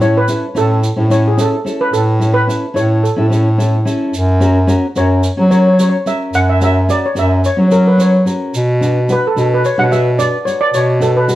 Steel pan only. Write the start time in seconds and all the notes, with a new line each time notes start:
0.01 C#5
0.17 B4
0.58 A4
1.11 C#5
1.28 G#4
1.41 A4
1.81 B4
1.93 A4
2.34 B4
2.76 C#5
3.04 A4
4.97 C#5
5.51 C#5
5.59 C#5
5.67 C#5
5.73 C#5
5.81 C#5
5.89 C#5
6.07 E5
6.35 F#5
6.49 E5
6.63 E5
6.90 D5
7.06 C#5
7.19 E5
7.46 C#5
7.72 A#4
7.88 B4
8.01 C#5
9.12 B4
9.27 A4
9.54 B4
9.66 C#5
9.79 F#5
9.92 E5
10.19 D5
10.45 C#5
10.60 D5
10.75 C#5
11.02 A4
11.17 B4